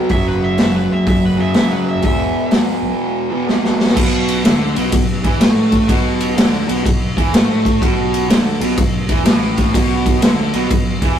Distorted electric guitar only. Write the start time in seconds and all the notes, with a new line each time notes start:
Already playing: B3
0.10 F#2 C#3 F#3
1.37 F#2 C#3 F#3
1.54 F#2 C#3 F#3
2.02 E2 B2 E3
3.30 E2 B2 E3
3.47 E2 B2 E3
3.96 B2
4.45 D3
4.76 B2
4.92 B2
5.23 E3
5.40 A3
5.88 B2
6.37 D3
6.68 B2
6.85 B2
7.17 E3
7.33 A3
7.82 B2
8.30 D3
8.62 B2
8.79 B2
9.10 E3
9.25 A2
9.74 B2
10.23 D3
10.55 B2
10.71 B2
11.02 E3